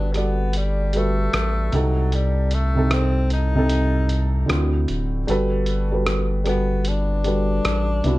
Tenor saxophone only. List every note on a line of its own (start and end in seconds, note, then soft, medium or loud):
0.00 0.13 D4 medium
0.12 0.19 A#3 medium
0.18 0.59 B3 medium
0.57 0.99 G3 medium
0.97 1.77 A3 loud
1.76 2.16 F#3 medium
2.15 2.55 G3 medium
2.54 2.95 A3 medium
2.93 3.32 C4 loud
3.33 4.46 D#4 loud
6.48 6.90 B3 medium
6.88 8.19 D4 loud